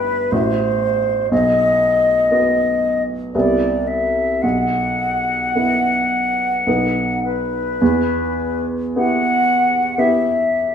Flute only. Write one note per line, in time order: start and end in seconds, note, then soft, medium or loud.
0.00 0.33 B4 medium
0.31 1.31 C5 medium
1.31 3.02 D#5 medium
3.33 3.89 D5 soft
3.87 4.43 E5 soft
4.42 7.24 F#5 medium
7.24 8.66 B4 soft
8.96 10.00 F#5 medium
9.99 10.75 E5 medium